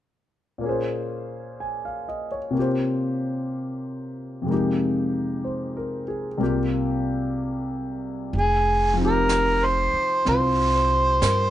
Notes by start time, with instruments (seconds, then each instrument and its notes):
0.58 grand piano A#2 A#3
0.64 grand piano C#4 G#4
0.69 grand piano C5
1.60 grand piano G#5
1.85 grand piano F5
2.09 grand piano D#5
2.32 grand piano C#5
2.51 grand piano C3 A#3
2.56 grand piano F4 G4
2.61 grand piano C5
4.42 grand piano F2 C3
4.46 grand piano G#3 A#3
4.51 grand piano D#4 G4
5.44 grand piano C5
5.77 grand piano A#4
6.08 grand piano G#4
6.38 grand piano C2 C3 A#3 F4
6.43 grand piano G4
8.32 upright bass F1, brush sweep
8.38 harmonica G#4
8.94 grand piano F3 C4
9.01 grand piano D#4 G4, harmonica A#4
9.29 brush sweep, snare, hi-hat pedal
9.66 harmonica C5
9.93 muted upright bass stroke
10.25 upright bass C2, grand piano C4 F4, harmonica C5, brush sweep, snare
10.75 grand piano C5
11.22 upright bass G2, grand piano A#4, brush sweep, snare, hi-hat pedal